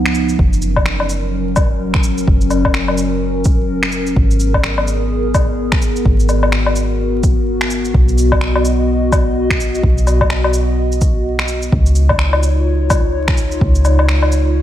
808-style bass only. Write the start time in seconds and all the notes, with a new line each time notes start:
Already playing: C#2
0.39 F#1
2.28 F#1
4.16 G#1
6.05 G#1
7.95 B1
9.83 B1
11.73 C#2
13.61 C#2